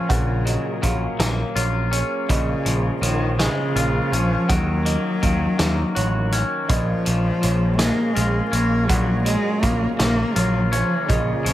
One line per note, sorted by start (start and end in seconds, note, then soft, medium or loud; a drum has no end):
0.00 0.11 F3 loud
0.00 0.45 F3 medium
0.00 11.06 A#3 medium
0.00 1.91 C#4 medium
0.00 0.48 F4 medium
0.00 2.26 G#4 medium
0.00 2.26 A#4 medium
0.09 0.56 A#1 medium
0.09 1.93 A#2 medium
0.09 0.92 C#3 medium
0.09 2.28 F#3 medium
0.09 2.27 C#4 medium
0.09 0.46 F#5 medium
0.09 kick medium
0.09 closed hi-hat medium
0.45 0.81 F#3 medium
0.45 0.82 D#5 medium
0.45 closed hi-hat soft
0.82 1.06 A#1 medium
0.82 2.29 F#3 medium
0.82 1.56 F5 medium
0.82 kick medium
0.82 closed hi-hat medium
1.19 1.42 A#1 medium
1.19 3.38 A#3 medium
1.19 snare medium
1.19 closed hi-hat medium
1.56 2.02 A#1 medium
1.56 2.29 F4 medium
1.56 1.90 C#5 medium
1.56 closed hi-hat medium
1.91 4.12 C#4 medium
1.91 2.29 C#5 medium
1.91 closed hi-hat medium
2.29 2.53 A#1 medium
2.29 4.12 A#2 medium
2.29 2.99 C#3 medium
2.29 4.47 G#3 medium
2.29 6.65 C#4 medium
2.29 4.47 F4 medium
2.29 11.53 A#4 medium
2.29 3.02 D#5 medium
2.29 kick medium
2.29 closed hi-hat medium
2.65 2.89 A#1 medium
2.65 3.01 F3 medium
2.65 closed hi-hat medium
3.02 3.48 A#1 medium
3.02 3.37 D#3 medium
3.02 4.48 F3 medium
3.02 3.39 C#5 medium
3.02 closed hi-hat medium
3.39 4.14 C#3 medium
3.39 4.49 G#3 medium
3.39 3.76 D#5 medium
3.39 snare medium
3.39 closed hi-hat medium
3.76 3.99 A#1 medium
3.76 4.49 F4 medium
3.76 4.49 F5 medium
3.76 closed hi-hat medium
4.12 4.35 A#1 medium
4.12 4.51 F3 medium
4.12 4.52 C#4 medium
4.12 closed hi-hat soft
4.49 4.95 D#2 medium
4.49 5.21 D#3 medium
4.49 6.33 F#3 medium
4.49 6.68 F#3 medium
4.49 6.68 D#4 medium
4.49 4.86 F#5 medium
4.49 kick medium
4.49 closed hi-hat medium
4.85 5.58 A#3 medium
4.85 5.23 D#5 medium
4.85 closed hi-hat soft
5.22 5.46 D#2 medium
5.22 6.69 D#3 medium
5.22 5.96 F5 medium
5.22 kick medium
5.22 closed hi-hat medium
5.59 5.82 D#2 medium
5.59 7.78 A#3 medium
5.59 snare medium
5.59 closed hi-hat medium
5.95 6.42 A1 medium
5.95 6.69 F#4 medium
5.95 6.31 C#5 medium
5.95 closed hi-hat medium
6.32 8.51 C#4 medium
6.32 6.69 C#5 medium
6.32 closed hi-hat medium
6.68 6.92 A#1 medium
6.68 8.89 A#2 medium
6.68 7.79 F3 medium
6.68 8.88 G#3 medium
6.68 8.87 C#4 medium
6.68 11.06 G#4 medium
6.68 7.42 D#5 medium
6.68 kick loud
6.68 closed hi-hat medium
7.06 7.30 A#1 medium
7.06 7.41 F3 medium
7.06 closed hi-hat soft
7.42 7.89 A#1 medium
7.42 9.25 F3 medium
7.42 7.79 C#5 medium
7.42 closed hi-hat medium
7.78 8.89 G#3 medium
7.78 8.16 A#3 medium
7.78 8.16 D#5 medium
7.78 snare medium
7.78 closed hi-hat medium
8.14 8.40 A#1 medium
8.14 8.50 G#3 medium
8.14 9.28 F4 medium
8.14 8.90 F5 medium
8.14 closed hi-hat medium
8.50 8.89 A#1 medium
8.50 8.89 A#3 medium
8.50 10.72 C#4 medium
8.50 closed hi-hat medium
8.88 9.35 A#1 medium
8.88 10.73 A#2 medium
8.88 11.07 C#3 medium
8.88 9.23 F#3 medium
8.88 11.53 C#4 medium
8.88 9.26 F#5 medium
8.88 kick medium
8.88 closed hi-hat medium
9.24 11.09 F#3 medium
9.24 9.63 G#3 medium
9.24 9.63 D#5 medium
9.24 closed hi-hat medium
9.61 9.86 A#1 medium
9.61 9.97 A#3 medium
9.61 10.36 F5 medium
9.61 kick medium
9.61 closed hi-hat medium
9.97 10.22 A#1 medium
9.97 10.35 A#3 medium
9.97 11.53 A#3 medium
9.97 snare medium
9.97 closed hi-hat medium
10.34 10.82 A#1 medium
10.34 10.69 F#3 medium
10.34 11.09 F4 medium
10.34 10.71 C#5 medium
10.34 closed hi-hat medium
10.70 11.08 F3 medium
10.70 11.53 C#4 medium
10.70 11.09 C#5 medium
10.70 closed hi-hat soft
11.07 11.32 A#1 medium
11.07 11.53 A#2 medium
11.07 11.53 C#3 medium
11.07 11.53 G#3 medium
11.07 11.53 A#3 medium
11.07 11.53 F4 medium
11.07 11.53 D#5 medium
11.07 kick medium
11.07 closed hi-hat medium
11.45 11.53 A#1 medium
11.45 11.53 F3 medium
11.45 closed hi-hat medium